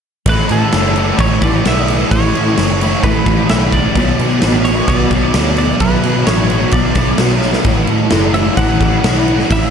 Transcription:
0.26 picked electric bass A1, distorted electric guitar A2 E3 A3, clean electric guitar B4, kick, crash
0.49 picked electric bass A2, clean electric guitar A4, crash
0.72 picked electric bass F#1, distorted electric guitar A2 E3 A3, snare, crash
0.96 distorted electric guitar E3 A3, crash
1.19 picked electric bass A1, clean electric guitar C#5, kick, crash
1.42 picked electric bass A1, distorted electric guitar E3 A3, clean electric guitar D5, kick, crash
1.65 picked electric bass B1, distorted electric guitar A2 E3 A3, clean electric guitar E5, snare, crash
1.88 crash
2.11 picked electric bass A1, distorted electric guitar A2 E3 A3, clean electric guitar C#5, kick, crash
2.35 picked electric bass A2, crash
2.56 picked electric bass F#1, distorted electric guitar A2 E3 A3, snare, crash
2.81 distorted electric guitar E3 A3, crash
3.03 picked electric bass A1, clean electric guitar B4, kick, crash
3.26 picked electric bass A1, distorted electric guitar E3 A3, kick, crash
3.49 picked electric bass B1, distorted electric guitar A2 E3 A3, clean electric guitar E5, snare, crash
3.72 clean electric guitar D5, kick, crash
3.95 picked electric bass B1, distorted electric guitar B2 F#3 B3, kick, crash
4.19 picked electric bass B2, crash
4.42 picked electric bass A1, distorted electric guitar B2 F#3 B3, snare, crash
4.65 distorted electric guitar F#3 B3, clean electric guitar C#5, crash
4.88 picked electric bass B1, clean electric guitar D5, kick, crash
5.11 picked electric bass B1, distorted electric guitar F#3 B3, kick, crash
5.34 picked electric bass D2, distorted electric guitar B2 F#3 B3, snare, crash
5.57 clean electric guitar D5, crash
5.80 picked electric bass B1, distorted electric guitar B2 F#3 B3, clean electric guitar B4, kick, crash
6.03 picked electric bass B2, crash
6.27 picked electric bass A1, distorted electric guitar B2 F#3 B3, clean electric guitar C#5, snare, crash
6.49 distorted electric guitar F#3 B3, crash
6.71 picked electric bass B1, clean electric guitar D5, kick, crash
6.95 picked electric bass B1, distorted electric guitar F#3 B3, kick, crash
7.18 picked electric bass B1, distorted electric guitar B2 F#3 B3, snare, crash
7.41 snare
7.53 snare
7.64 picked electric bass A1, distorted electric guitar A2 E3 A3, kick, crash
7.87 picked electric bass A2, crash
8.10 picked electric bass F#1, distorted electric guitar A2 E3 A3, snare, crash
8.34 distorted electric guitar E3 A3, clean electric guitar E5, crash
8.57 picked electric bass A1, clean electric guitar F#5, kick, crash
8.80 picked electric bass A1, distorted electric guitar E3 A3, kick, crash
9.03 picked electric bass B1, distorted electric guitar A2 E3 A3, snare, crash
9.28 crash
9.40 snare
9.50 picked electric bass A1, distorted electric guitar A2 E3 A3, clean electric guitar E5, kick, crash

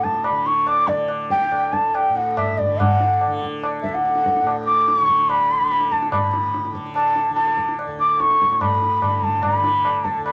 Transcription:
Already playing: tanpura D2 A2 D3
0.04 bansuri A5, tabla ke
0.14 tabla te
0.24 bansuri B5, tabla na
0.30 tanpura D3
0.46 bansuri C#6, tabla te
0.67 bansuri D6, tabla na
0.88 tanpura D3, bansuri D5, tabla ke
1.08 tabla na
1.30 bansuri G5, tabla ke
1.41 tabla te
1.49 tanpura D2, tabla na
1.73 bansuri A5, tabla ke
1.95 bansuri G5, tabla na
2.08 tanpura A2
2.15 bansuri F#5, tabla te
2.37 bansuri E5, tabla na, tabla ge
2.58 bansuri D5, tabla ge
2.66 tanpura D3
2.80 bansuri F#5, tabla na, tabla ge
3.00 tabla te
3.21 tabla na
3.26 tanpura D3
3.42 tabla ke
3.63 tabla na
3.82 tanpura D2, bansuri E5, tabla ke
3.94 bansuri F#5, tabla te
4.05 tabla te
4.15 tabla te
4.26 tabla ke
4.37 tabla te
4.42 tanpura A2
4.47 tabla na
4.66 bansuri D6, tabla te
4.88 bansuri D6, tabla te
4.99 tanpura D3, bansuri C#6, tabla te
5.08 tabla ke
5.19 tabla te
5.29 bansuri B5, tabla na
5.50 tabla te
5.58 tanpura D3
5.71 tabla te
5.81 tabla te
5.92 bansuri A5, tabla ke
6.02 tabla te
6.12 tanpura A2, bansuri B5, tabla na, tabla ge
6.33 tabla te
6.54 tabla te
6.65 tabla te
6.71 tanpura D3
6.75 tabla ke
6.86 tabla te
6.94 bansuri A5, tabla na
7.16 tabla te
7.28 tanpura D3
7.35 bansuri A5, tabla te
7.47 tabla te
7.57 tabla ke
7.69 tabla te
7.79 tabla na
7.85 tanpura D2
7.99 bansuri D6, tabla te
8.20 bansuri C#6, tabla te
8.31 tabla te
8.42 tanpura A2, tabla ke
8.51 tabla te
8.61 bansuri B5, tabla na, tabla ge
8.82 tabla te
9.01 tanpura D3, tabla na, tabla ge
9.22 bansuri A5, tabla ge
9.42 bansuri B5, tabla na, tabla ge
9.59 tanpura D3
9.64 tabla te
9.85 tabla na
10.04 bansuri A5, tabla ke
10.16 tanpura D2
10.25 bansuri B5, tabla na

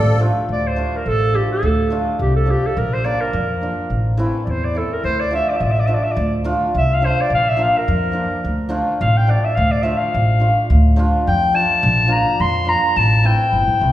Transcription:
Already playing: upright bass A1, hammered dulcimer F3, accordion A4, clarinet D5
0.19 hammered dulcimer F3 A3 D4 F4
0.49 upright bass D2, clarinet D5
0.67 clarinet C5
0.76 hammered dulcimer F3 A3 D4 F4
0.96 clarinet A#4
1.06 upright bass A1, clarinet A4
1.34 hammered dulcimer F3 A3 D4 F4, clarinet G4
1.52 clarinet A4
1.63 upright bass D2
1.90 hammered dulcimer F3 A3 D4 F4
2.19 upright bass C2, clarinet G4
2.36 clarinet A4
2.45 hammered dulcimer F3 A3 D4 F4
2.50 clarinet G4
2.66 clarinet A4
2.77 upright bass A#1, clarinet A#4
2.93 clarinet C5
3.04 hammered dulcimer F3 A#3 D4 F4, clarinet D5
3.21 clarinet A#4
3.33 upright bass F2
3.61 hammered dulcimer F3 A#3 D4 F4
3.90 upright bass A1
4.17 hammered dulcimer E3 A3 C4 E4
4.44 upright bass E2, clarinet D5
4.50 clarinet C5
4.65 clarinet D5
4.75 hammered dulcimer E3 A3 C4 E4, clarinet A4
4.93 clarinet A#4
5.04 upright bass D2, clarinet C5
5.20 clarinet D5
5.31 hammered dulcimer F3 A3 D4 F4
5.35 clarinet E5
5.49 clarinet D5
5.56 upright bass A1, clarinet E5
5.63 clarinet D5
5.71 clarinet E5
5.80 clarinet D5
5.86 hammered dulcimer F3 A3 D4 F4, clarinet E5
5.94 clarinet D5
6.03 clarinet E5
6.11 clarinet D5
6.16 upright bass D2
6.44 hammered dulcimer F3 A3 D4 F4
6.74 upright bass C2, clarinet E5
6.94 clarinet F5
7.01 hammered dulcimer F3 A3 D4 F4
7.05 clarinet C5
7.21 clarinet D5
7.30 upright bass A#1
7.34 clarinet F5
7.49 clarinet E5
7.57 hammered dulcimer F3 A#3 D4 F4
7.63 clarinet F5
7.78 clarinet A#4
7.88 upright bass F2
8.12 hammered dulcimer F3 A#3 D4 F4
8.44 upright bass D2
8.69 hammered dulcimer F3 A3 D4 F4
9.01 upright bass A1, clarinet F5
9.17 clarinet G5
9.27 hammered dulcimer F3 A3 D4 F4, clarinet D5
9.45 clarinet E5
9.56 upright bass D2, clarinet F5
9.71 clarinet D5
9.82 hammered dulcimer F3 A3 D4 F4, clarinet E5
9.97 clarinet F5
10.14 upright bass A1
10.40 hammered dulcimer F3 A3 D4 F4
10.70 upright bass D2
10.96 hammered dulcimer F3 A3 D4 F4
11.27 upright bass F2, clarinet G5
11.53 hammered dulcimer F3 A3 D4 F4, clarinet A5
11.83 upright bass A#1
12.08 hammered dulcimer F3 A#3 D4 F4
12.12 clarinet A#5
12.40 upright bass F2, clarinet C6
12.65 hammered dulcimer F3 A#3 D4 F4
12.69 clarinet A#5
12.96 upright bass A1, clarinet A5
13.24 hammered dulcimer E3 A3 C4 E4, clarinet G5
13.53 upright bass G1
13.68 upright bass A1
13.79 upright bass C2, hammered dulcimer E3 A3 C4 E4

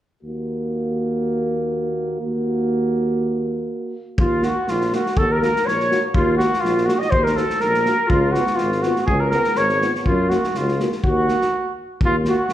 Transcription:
0.23 tuba D#2, trombone A#3, euphonium F#4
2.21 tuba D#2, trombone A#3, euphonium F#4
4.18 tuba D#2, flugelhorn F4, clarinet F4, kick
4.42 trombone A#3, euphonium F#4, flugelhorn F#4, clarinet F#4, snare
4.67 tuba A#1, flugelhorn F4, clarinet F4, snare
4.81 snare
4.92 trombone A#3, euphonium F#4, clarinet F#4, flugelhorn F#4, snare
5.06 snare
5.17 tuba D#2, flugelhorn A4, clarinet A4, kick
5.31 flugelhorn A#4, clarinet A#4
5.41 trombone A#3, euphonium F#4, clarinet A#4, flugelhorn A#4, snare
5.56 snare
5.65 tuba A#1, clarinet C#5, flugelhorn C#5, snare
5.80 snare
5.90 trombone A#3, euphonium F#4, snare
6.14 tuba D#2, flugelhorn F4, clarinet F4, kick
6.37 trombone A#3, flugelhorn F#4, clarinet F#4, euphonium F#4, snare
6.53 snare
6.60 tuba A#1, flugelhorn F4, clarinet F4
6.65 snare
6.77 snare
6.85 trombone A#3, flugelhorn F#4, clarinet F#4, euphonium F#4, snare
6.99 flugelhorn D#5, clarinet D#5, snare
7.10 tuba D#2, flugelhorn C5, clarinet C5, kick
7.23 clarinet A#4, flugelhorn A#4, snare
7.36 trombone A#3, euphonium F#4, flugelhorn A4, clarinet A4, snare
7.50 snare
7.60 tuba A#1, clarinet A#4, flugelhorn A#4, snare
7.74 snare
7.85 trombone A#3, euphonium F#4, snare
8.07 tuba C#2, clarinet F4, flugelhorn F4, kick
8.31 euphonium F4, flugelhorn F#4, clarinet F#4, snare
8.36 trombone B3
8.47 snare
8.55 flugelhorn F4, clarinet F4, snare
8.59 tuba G#1
8.72 snare
8.82 trombone B3, euphonium F4, flugelhorn F#4, clarinet F#4, snare
8.96 snare
9.06 tuba C#2, flugelhorn G#4, clarinet G#4, kick
9.20 flugelhorn A#4, clarinet A#4
9.30 trombone B3, euphonium F4, flugelhorn A#4, clarinet A#4, snare
9.44 snare
9.55 tuba G#1, clarinet C#5, flugelhorn C#5, snare
9.69 snare
9.82 trombone B3, euphonium F4, snare
9.95 snare
10.05 tuba F#2, flugelhorn F4, clarinet F4, kick
10.29 trombone A#3, clarinet F#4, flugelhorn F#4, euphonium F#4, snare
10.44 snare
10.54 tuba C#2, clarinet F4, flugelhorn F4, snare
10.68 snare
10.80 trombone A#3, euphonium F#4, snare
10.92 snare
11.04 tuba D#2, clarinet F#4, flugelhorn F#4, kick
11.28 trombone A#3, euphonium F#4, snare
11.41 snare
12.01 tuba D#2, clarinet F4, kick
12.05 flugelhorn F4
12.25 trombone A#3, clarinet F#4, euphonium F#4, snare
12.30 flugelhorn F#4
12.49 snare

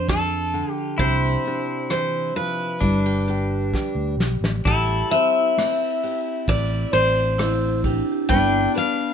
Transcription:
Already playing: fingered electric bass F2, vibraphone F3 D4, nylon-string guitar C4 A4, pedal steel guitar F4
0.09 steel-string acoustic guitar A4, kick, cross-stick, closed hi-hat
0.54 nylon-string guitar D3, closed hi-hat
0.71 steel-string acoustic guitar G4
0.98 fingered electric bass C2, nylon-string guitar C3 D4 G4, pedal steel guitar E4, steel-string acoustic guitar C5, kick, closed hi-hat
1.45 nylon-string guitar D4 G4, closed hi-hat
1.90 nylon-string guitar E3, steel-string acoustic guitar C5, cross-stick, closed hi-hat
2.36 nylon-string guitar F3, steel-string acoustic guitar B4, closed hi-hat
2.81 fingered electric bass G1, nylon-string guitar G3 E4, pedal steel guitar D4, kick, closed hi-hat
3.06 nylon-string guitar G4
3.28 vibraphone G4, nylon-string guitar G4, closed hi-hat
3.74 nylon-string guitar G4, kick, snare
3.95 fingered electric bass D2
4.17 fingered electric bass B1, snare
4.41 fingered electric bass A1, snare
4.65 fingered electric bass A1, nylon-string guitar A2 G4, pedal steel guitar E4, steel-string acoustic guitar A4, kick, ride
5.11 vibraphone C4, nylon-string guitar C5, steel-string acoustic guitar E5, ride
5.39 vibraphone E4
5.57 nylon-string guitar A3, cross-stick, ride
6.03 nylon-string guitar G4, ride
6.48 fingered electric bass A1, nylon-string guitar E3, steel-string acoustic guitar D5, kick, ride
6.93 fingered electric bass A1, nylon-string guitar C4, steel-string acoustic guitar C5, ride
7.01 pedal steel guitar D4
7.38 nylon-string guitar A3, vibraphone E4, cross-stick, ride
7.83 vibraphone D4, nylon-string guitar G4, kick, ride
8.12 vibraphone G4
8.29 fingered electric bass G1, nylon-string guitar G3 B4, vibraphone B3, pedal steel guitar D4, steel-string acoustic guitar G5, kick, ride
8.75 nylon-string guitar B4, steel-string acoustic guitar F5, ride

